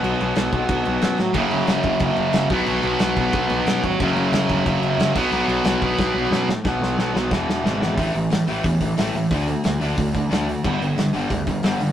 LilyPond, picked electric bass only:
\new Staff \with { instrumentName = "Picked electric bass" } { \clef bass \time 4/4 \key b \dorian \tempo 4 = 181 b,,8 b,,8 b,,8 b,,8 b,,8 b,,8 fis,8 a,8 | fis,,8 fis,,8 fis,,8 fis,,8 fis,,8 fis,,8 fis,,8 b,,8 | b,,8 b,,8 b,,8 b,,8 b,,8 b,,8 fis,8 gis,,8 | fis,,8 fis,,8 fis,,8 fis,,8 fis,,8 fis,,8 fis,,8 b,,8 |
b,,8 b,,8 b,,8 b,,8 b,,8 b,,8 fis,8 a,8 | b,,8 b,,8 b,,8 b,,8 e,,8 e,,8 gis,,4 | \key d \major a,,8 a,,8 a,8 a,,8 e,8 a,,8 a,,8 a,8 | d,4 d,8 d,8 d,8 d8 d,4 |
g,,8 g,,8 g,8 g,,8 d,8 g,,8 g,,8 g,8 | }